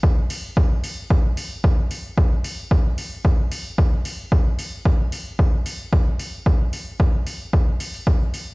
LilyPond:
\new DrumStaff \with { instrumentName = "Drums" } \drummode { \time 4/4 \tempo 4 = 112 bd8 hho8 bd8 hho8 bd8 hho8 bd8 hho8 | bd8 hho8 bd8 hho8 bd8 hho8 bd8 hho8 | bd8 hho8 bd8 hho8 bd8 hho8 bd8 hho8 | bd8 hho8 bd8 hho8 bd8 hho16 hho16 bd8 hho8 | }